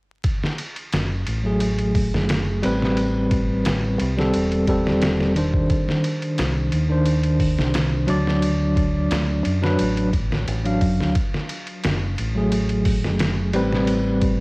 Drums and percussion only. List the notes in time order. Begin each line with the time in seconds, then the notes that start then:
0.24 kick, ride
0.43 snare
0.58 ride
0.76 ride
0.93 snare, ride
1.27 ride
1.60 ride
1.79 ride
1.95 kick, open hi-hat
2.14 snare
2.29 snare, ride
2.63 ride
2.82 snare
2.97 ride
3.31 kick, ride
3.65 snare, ride
3.99 ride
4.19 snare
4.34 ride
4.52 ride
4.67 kick, ride
4.87 snare
5.02 snare, ride
5.20 snare
5.36 ride
5.54 kick
5.70 kick, ride
5.89 snare
6.04 ride
6.22 ride
6.38 snare, ride
6.72 ride
7.06 ride
7.24 ride
7.40 kick, open hi-hat
7.59 snare
7.74 snare, ride
8.08 ride
8.27 snare
8.42 ride
8.76 kick, ride
9.11 snare, ride
9.45 ride
9.64 snare
9.79 ride
9.97 ride
10.13 kick, ride
10.32 snare
10.48 ride
10.65 ride
10.81 kick, open hi-hat
11.00 snare
11.15 kick, ride
11.34 snare
11.49 ride
11.67 ride
11.83 snare, ride
12.18 ride
12.52 ride
12.69 ride
12.85 kick, open hi-hat
13.04 snare
13.19 snare, ride
13.53 ride
13.73 snare
13.87 ride
14.22 kick, ride